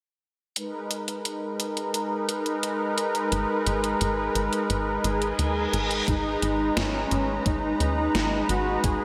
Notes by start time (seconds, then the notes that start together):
0.56 G#3 D#4 A#4 B4, closed hi-hat
0.91 closed hi-hat
1.08 closed hi-hat
1.25 closed hi-hat
1.60 closed hi-hat
1.77 closed hi-hat
1.94 closed hi-hat
2.29 closed hi-hat
2.46 closed hi-hat
2.63 closed hi-hat
2.98 closed hi-hat
3.15 closed hi-hat
3.32 G#1, closed hi-hat
3.67 G#1, closed hi-hat
3.84 closed hi-hat
4.01 G#1, closed hi-hat
4.35 G#1, closed hi-hat
4.53 closed hi-hat
4.70 G#1, closed hi-hat, reverse cymbal
5.04 G#1 G#4, closed hi-hat
5.22 closed hi-hat
5.39 D#2, closed hi-hat
5.73 G#1, closed hi-hat
5.91 closed hi-hat
6.08 G#1 G#3 D#4 B4 A#5, kick, closed hi-hat
6.42 G#1, closed hi-hat
6.77 G#1 C#4, snare, closed hi-hat
7.11 G#1, closed hi-hat
7.46 G#1 D#4, kick, closed hi-hat
7.80 D#2 D#4, closed hi-hat
8.15 G#1, snare, closed hi-hat
8.49 G#1 F#4, closed hi-hat
8.84 G#1 G#4, kick, closed hi-hat